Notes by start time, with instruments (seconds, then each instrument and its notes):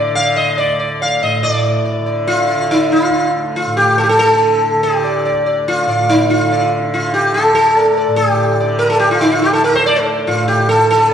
Already playing: tanpura D2 A2 D3, sitar D5
0.11 tanpura D3
0.15 sitar F5
0.36 sitar D#5
0.58 sitar D5
0.66 tanpura D2
0.80 sitar D5
1.02 sitar F5
1.23 tanpura A2, sitar D#5
1.43 tanpura A2, sitar D5
1.65 sitar D5
1.85 sitar D5
1.99 tanpura D3
2.06 sitar D5
2.27 sitar F4
2.50 sitar D5
2.56 tanpura D3
2.71 sitar D#4
2.92 sitar F4
3.10 tanpura D2
3.56 sitar F4
3.66 tanpura A2
3.77 sitar G4
3.98 sitar A4
4.03 sitar G4
4.09 sitar A4
4.19 tanpura D3, sitar A4
4.76 tanpura D3
4.83 sitar G4
5.04 sitar D5
5.25 sitar D5
5.33 tanpura D2
5.46 sitar D5
5.68 sitar F4
5.86 tanpura A2, sitar D5
6.09 sitar D#4
6.30 sitar F4
6.43 tanpura D3
6.52 sitar D5
6.94 sitar F4
6.99 tanpura D3
7.14 sitar G4
7.34 sitar A4
7.53 tanpura D2, sitar A4
7.77 sitar D5
7.98 sitar D5
8.08 tanpura A2
8.16 sitar G4
8.60 tanpura D3, sitar D5
8.79 sitar A#4
8.90 sitar A4
8.99 sitar G4
9.11 sitar F4
9.18 tanpura D3, sitar D#4
9.32 sitar F4
9.42 sitar G4
9.53 sitar A4
9.64 sitar A#4
9.73 tanpura D2, sitar C5
9.86 sitar D5
9.96 sitar A4
10.27 tanpura A2, sitar F4
10.48 sitar G4
10.69 sitar A4
10.82 tanpura D3
10.90 sitar A4